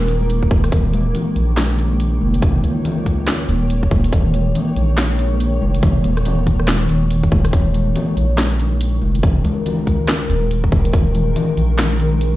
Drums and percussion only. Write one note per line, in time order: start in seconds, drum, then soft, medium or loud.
0.08 closed hi-hat soft
0.21 high conga medium
0.30 closed hi-hat medium
0.43 kick medium
0.51 kick loud
0.51 high conga loud
0.64 cross-stick medium
0.64 closed hi-hat medium
0.72 kick loud
0.72 closed hi-hat medium
0.72 low conga medium
0.93 closed hi-hat soft
0.93 high conga loud
1.15 closed hi-hat medium
1.15 low conga medium
1.27 high conga medium
1.36 closed hi-hat soft
1.57 snare loud
1.57 clap medium
1.57 closed hi-hat medium
1.57 high conga medium
1.79 closed hi-hat soft
1.92 high conga medium
2.00 closed hi-hat medium
2.21 high conga medium
2.34 closed hi-hat medium
2.42 kick loud
2.42 closed hi-hat medium
2.42 low conga medium
2.63 closed hi-hat medium
2.63 high conga medium
2.85 closed hi-hat medium
2.85 low conga medium
2.98 high conga medium
3.06 kick medium
3.06 closed hi-hat medium
3.28 snare loud
3.28 clap medium
3.28 closed hi-hat medium
3.28 high conga medium
3.49 closed hi-hat medium
3.62 high conga medium
3.70 closed hi-hat medium
3.83 kick medium
3.91 kick loud
3.91 high conga medium
4.04 closed hi-hat medium
4.13 kick loud
4.13 closed hi-hat medium
4.13 low conga medium
4.33 closed hi-hat medium
4.33 high conga medium
4.55 closed hi-hat medium
4.55 low conga medium
4.68 high conga medium
4.76 closed hi-hat medium
4.97 snare loud
4.97 clap medium
4.97 closed hi-hat medium
4.97 high conga medium
5.19 closed hi-hat medium
5.32 high conga medium
5.40 closed hi-hat medium
5.62 high conga medium
5.74 closed hi-hat medium
5.83 kick loud
5.83 closed hi-hat medium
5.83 low conga medium
6.04 closed hi-hat medium
6.04 high conga medium
6.17 cross-stick medium
6.17 closed hi-hat soft
6.25 closed hi-hat medium
6.25 low conga loud
6.38 high conga medium
6.47 kick medium
6.47 closed hi-hat medium
6.60 cross-stick medium
6.68 snare loud
6.68 clap medium
6.68 closed hi-hat medium
6.68 high conga medium
6.89 closed hi-hat medium
7.02 high conga medium
7.10 closed hi-hat medium
7.23 kick medium
7.23 closed hi-hat soft
7.32 kick loud
7.32 high conga loud
7.45 cross-stick medium
7.45 closed hi-hat medium
7.53 kick loud
7.53 closed hi-hat medium
7.53 low conga loud
7.74 closed hi-hat medium
7.74 high conga medium
7.96 closed hi-hat medium
7.96 low conga loud
8.08 high conga medium
8.17 closed hi-hat medium
8.37 snare loud
8.37 clap medium
8.37 closed hi-hat medium
8.37 high conga medium
8.59 closed hi-hat medium
8.73 high conga medium
8.81 closed hi-hat medium
9.02 high conga medium
9.15 closed hi-hat medium
9.23 kick loud
9.23 closed hi-hat medium
9.23 low conga medium
9.44 closed hi-hat medium
9.44 high conga loud
9.66 closed hi-hat medium
9.66 low conga medium
9.79 high conga medium
9.87 kick medium
9.87 closed hi-hat medium
10.08 snare loud
10.08 clap medium
10.08 closed hi-hat medium
10.08 high conga medium
10.30 closed hi-hat medium
10.42 high conga medium
10.51 closed hi-hat medium
10.64 kick medium
10.72 kick loud
10.72 high conga loud
10.85 closed hi-hat medium
10.93 kick loud
10.93 closed hi-hat medium
10.93 low conga medium
11.15 closed hi-hat medium
11.15 high conga medium
11.36 closed hi-hat medium
11.36 low conga loud
11.49 high conga medium
11.57 closed hi-hat soft
11.79 snare loud
11.79 clap medium
11.79 closed hi-hat medium
11.79 high conga medium
12.00 closed hi-hat soft
12.13 high conga medium
12.21 closed hi-hat medium